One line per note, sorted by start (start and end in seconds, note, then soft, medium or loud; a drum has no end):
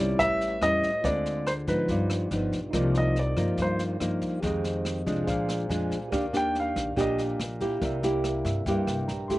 0.00 0.18 C2 loud
0.00 0.17 C3 medium
0.00 0.58 G3 medium
0.00 0.58 C#4 medium
0.00 0.17 D#4 soft
0.00 0.59 E4 medium
0.00 0.18 F4 soft
0.00 0.19 A#4 soft
0.00 0.16 D5 medium
0.00 0.20 D5 medium
0.17 0.59 A1 medium
0.17 1.02 A2 medium
0.17 1.01 E4 medium
0.17 1.02 G4 soft
0.17 0.63 E5 loud
0.17 kick medium
0.17 snare soft
0.21 1.03 B4 soft
0.21 1.04 C#5 medium
0.41 snare soft
0.61 0.81 E2 medium
0.61 0.89 G3 medium
0.61 0.90 C#4 medium
0.61 0.90 E4 medium
0.61 1.06 D#5 loud
0.61 cross-stick medium
0.61 snare soft
0.83 kick soft
0.83 snare soft
1.01 1.64 D2 loud
1.01 1.87 D3 medium
1.01 1.47 G#3 medium
1.01 1.47 C4 medium
1.01 1.86 F4 medium
1.01 1.87 G#4 soft
1.01 1.48 D5 medium
1.01 kick medium
1.01 snare soft
1.05 1.47 F4 medium
1.05 1.88 C5 soft
1.05 1.89 D5 medium
1.26 snare soft
1.47 1.52 C5 medium
1.47 cross-stick medium
1.47 snare soft
1.67 1.87 G#2 medium
1.67 2.28 F3 medium
1.67 2.28 B3 medium
1.67 2.28 D#4 medium
1.67 2.49 B4 medium
1.67 kick soft
1.67 snare soft
1.86 2.28 G1 medium
1.86 2.72 G2 medium
1.86 2.69 D#4 medium
1.86 2.72 F4 soft
1.86 2.72 B4 soft
1.86 kick medium
1.86 snare soft
1.92 2.74 D5 medium
2.10 cross-stick medium
2.10 snare soft
2.31 2.50 G1 medium
2.31 2.59 F3 medium
2.31 2.59 B3 soft
2.31 2.59 D#4 medium
2.31 snare soft
2.52 2.71 B1 medium
2.52 kick soft
2.52 snare soft
2.70 3.33 C2 loud
2.70 3.56 C3 medium
2.70 3.15 F3 medium
2.70 3.16 A#3 medium
2.70 4.38 D#4 medium
2.70 3.16 D#4 medium
2.70 4.39 F4 medium
2.70 4.40 A#4 soft
2.70 kick medium
2.70 cross-stick medium
2.70 snare soft
2.77 4.41 D5 medium
2.95 3.17 D#5 medium
2.95 snare soft
3.16 3.57 D5 medium
3.16 snare soft
3.37 3.57 G2 medium
3.37 3.97 F3 medium
3.37 3.97 A#3 medium
3.37 3.97 D#4 medium
3.37 kick soft
3.37 cross-stick medium
3.37 snare soft
3.57 3.98 G2 medium
3.57 4.41 G2 medium
3.57 kick medium
3.57 snare soft
3.62 3.81 C5 medium
3.79 snare soft
4.00 4.20 G2 medium
4.00 4.40 F3 medium
4.00 4.40 A#3 medium
4.00 4.40 D#4 medium
4.00 cross-stick medium
4.00 snare soft
4.21 kick soft
4.21 snare soft
4.40 5.02 F2 loud
4.40 5.26 F2 medium
4.40 5.03 D#3 medium
4.40 5.03 G#3 medium
4.40 5.24 G4 medium
4.40 5.23 G#4 medium
4.40 5.25 C5 medium
4.40 kick medium
4.40 snare soft
4.44 5.04 C4 medium
4.44 5.06 D#5 medium
4.64 snare soft
4.85 cross-stick medium
4.85 snare soft
5.06 5.26 C2 medium
5.06 5.66 F3 medium
5.06 5.67 G#3 medium
5.06 5.67 D4 medium
5.06 5.26 D#5 medium
5.06 kick soft
5.06 snare soft
5.24 5.67 A#1 medium
5.24 6.10 A#2 medium
5.24 6.09 G#4 medium
5.24 6.10 C5 medium
5.24 5.29 F5 medium
5.24 kick medium
5.24 snare soft
5.28 6.11 D5 medium
5.28 6.12 F5 medium
5.49 cross-stick medium
5.49 snare soft
5.69 5.89 F2 medium
5.69 5.97 F3 medium
5.69 5.97 G#3 medium
5.69 5.97 D4 medium
5.69 6.09 G#5 soft
5.69 snare soft
5.91 kick soft
5.91 snare soft
6.08 6.72 D#2 medium
6.08 6.95 D#3 medium
6.08 6.24 A#3 medium
6.08 7.76 G4 medium
6.08 7.77 A#4 medium
6.12 6.25 D4 medium
6.12 6.25 G4 medium
6.12 7.78 D5 medium
6.12 7.79 F5 medium
6.12 kick medium
6.12 cross-stick medium
6.12 snare soft
6.33 6.93 A#3 medium
6.33 6.94 D4 medium
6.33 6.94 G4 medium
6.33 6.56 G5 loud
6.33 snare soft
6.55 snare soft
6.60 6.97 F5 medium
6.76 6.95 A#1 medium
6.76 kick soft
6.76 cross-stick medium
6.76 snare soft
6.96 7.36 A#1 medium
6.96 7.79 A#2 medium
6.96 7.39 A#3 medium
6.96 7.39 D4 medium
6.96 7.39 G4 medium
6.96 kick medium
6.96 snare soft
7.00 7.19 D#5 medium
7.18 snare soft
7.39 7.59 A#1 medium
7.39 cross-stick medium
7.39 snare soft
7.60 7.99 A#3 medium
7.60 8.00 E4 medium
7.60 8.00 G4 medium
7.60 kick soft
7.60 snare soft
7.79 8.41 C2 loud
7.79 8.64 C3 medium
7.79 9.39 G4 medium
7.79 9.39 A#4 medium
7.79 kick medium
7.79 snare soft
7.83 9.39 D5 medium
7.83 8.44 E5 medium
8.03 8.63 A#3 medium
8.03 8.63 E4 medium
8.03 8.64 G4 medium
8.03 snare soft
8.24 cross-stick medium
8.24 snare soft
8.45 8.64 G2 loud
8.45 8.65 E5 medium
8.45 kick soft
8.45 snare soft
8.66 8.86 G2 medium
8.66 9.39 G2 medium
8.66 9.09 A#3 medium
8.66 9.09 E4 medium
8.66 9.09 G4 medium
8.66 8.85 G5 medium
8.66 kick medium
8.66 snare soft
8.87 9.06 C2 medium
8.87 9.07 G5 medium
8.87 cross-stick medium
8.87 snare soft
9.08 9.27 A#1 medium
9.08 9.28 A#5 soft
9.08 snare soft
9.28 9.39 G1 medium
9.28 9.39 A3 medium
9.28 9.39 E4 medium
9.28 9.39 G4 medium
9.28 9.39 C6 soft
9.28 kick soft
9.28 snare soft